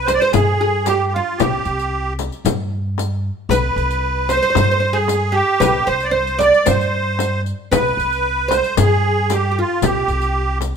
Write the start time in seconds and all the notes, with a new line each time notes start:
Already playing: C2
0.05 C5, riq, frame drum
0.14 D5
0.19 C5, riq
0.33 G2 G#4, riq, frame drum
0.61 G#4
0.85 G4, riq, frame drum
1.07 G4
1.13 F4
1.38 C2 G4, riq, frame drum
1.42 G4
1.65 C2, riq
1.79 riq
2.19 riq, frame drum
2.32 riq
2.45 G2, riq, frame drum
2.98 riq, frame drum
3.49 C2 B4, riq, frame drum
3.76 C2, riq
3.90 riq
4.29 C5, riq, frame drum
4.37 C5
4.43 C5, riq
4.50 C5
4.55 G2 C5, riq, frame drum
4.64 C5
4.71 C5
4.80 C5
4.93 G#4
5.08 riq, frame drum
5.32 G4
5.60 C2 B4, riq, frame drum
5.87 C2 C5, riq
6.00 D5, riq
6.11 C5
6.27 riq
6.39 D5, riq, frame drum
6.54 riq
6.66 G2 C5, riq, frame drum
6.81 riq
7.19 riq, frame drum
7.46 riq
7.72 C2 B4, riq, frame drum
7.97 C2, riq
8.12 riq
8.48 C5, riq, frame drum
8.64 riq
8.77 G2 G#4, riq, frame drum
8.81 G#4
9.30 G4, riq, frame drum
9.51 G4
9.59 F4
9.82 C2 G4, riq, frame drum
10.08 C2, riq
10.22 riq
10.61 riq, frame drum